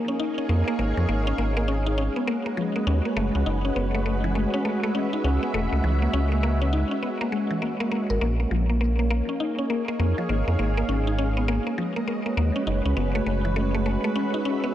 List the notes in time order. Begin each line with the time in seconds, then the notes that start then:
Already playing: A#3 D#4 G#4 C#5 F5
0.08 C#4
0.20 D#4
0.38 C#4
0.49 F2 A#3
0.68 A#3
0.79 G#1 A#3
0.97 F2 F3
1.09 G#1 G#3 A#3
1.27 C#4
1.38 G#1 A#3
1.57 A#3
1.68 C#4
1.87 D#4
1.98 C#4
2.03 F#4 B4 D#5
2.16 B3
2.27 A#3
2.46 A#3
2.57 F3
2.76 A#3
2.87 D#2 C#4
3.05 A#3
3.17 F#1 A3
3.35 C#2 C#4
3.46 F#1 D#4
3.65 C#4
3.76 F#1 B3
3.95 A3
4.06 A3
4.24 E3
4.35 A3 E5
4.54 C#4
4.65 A3
4.84 A3
4.95 C#4
5.13 D#4
5.24 C#2 C#4
5.43 B3
5.54 E1 A3
5.72 C#2 A3
5.84 C#2 E3
6.02 A#3
6.13 C#2 C#4
6.32 A#3
6.43 A#3
6.62 C#4
6.73 D#4
6.91 C#4
7.03 B3
7.21 A#3
7.32 G#3
7.51 E3
7.62 A#3
7.80 A#3
7.92 A#3
8.10 G#1 A#4
8.21 A#1 A#3
8.40 A#3
8.51 A#1 F3
8.69 A#3 C#5
8.81 A#3 D#4
8.99 A#3
9.10 A#3 G#4
9.29 C#4 F5
9.40 D#4
9.59 C#4
9.70 A#3
9.88 A#3
10.00 F2 A#3
10.18 F3
10.29 G#1 A#3
10.48 F2 A#3
10.59 G#1 G#3 A#3
10.77 A#3
10.89 G#1 C#4
10.96 C#4
11.07 D#4
11.18 C#4
11.25 F#4
11.37 B3
11.48 A#3
11.54 B4 D#5
11.67 A#3
11.78 F3
11.96 A#3
12.08 A#3
12.26 A#3
12.37 D#2 A#3
12.56 C#4
12.67 F#1 D#4
12.85 C#2 C#4
12.97 F#1 B3
13.15 A3
13.26 F#1 A3
13.45 E3
13.56 A3
13.75 A3 E5
13.86 A3
14.04 A3
14.16 C#4
14.34 D#4
14.45 C#4
14.64 B3